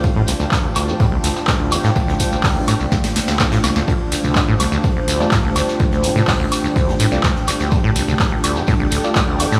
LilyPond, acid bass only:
\new Staff \with { instrumentName = "Acid bass" } { \clef bass \time 4/4 \key d \minor \tempo 4 = 125 f,16 a,16 c,16 d,16 r16 d,16 d,16 f,16 a,16 c,16 d,16 r16 d,16 d,16 f,16 a,16 | c,16 d,16 r16 d,16 d,16 f,16 a,16 c,16 d,16 r16 d,16 d,16 f,16 a,16 c,16 d,16 | d,16 r16 d,16 d,16 f,16 a,16 c,16 d,16 r16 d,16 d,16 f,16 a,16 c,16 d,16 r16 | d,16 d,16 f,16 a,16 c,16 d,16 r16 d,16 d,16 f,16 a,16 c,16 d,16 r16 d,16 d,16 |
f,16 a,16 c,16 d,16 r16 d,16 d,16 f,16 a,16 c,16 d,16 r16 d,16 d,16 f,16 a,16 | }